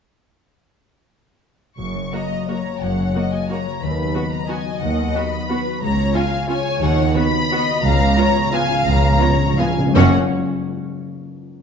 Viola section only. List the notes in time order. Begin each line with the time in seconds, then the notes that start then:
2.12 A#3 F#4
2.48 A#3 F#4
3.15 A#3 F#4
3.50 A#3 F#4
4.14 B3 F#4
4.48 B3 F#4
5.15 B3 F#4
5.49 B3 F#4
6.14 C#4 F4
6.48 C#4 F4
7.15 B3 F#4
7.51 B3 F#4
8.17 B3 F4
8.53 B3 F4
9.20 B3 F4
9.58 B3 F4
9.95 A#3 C#4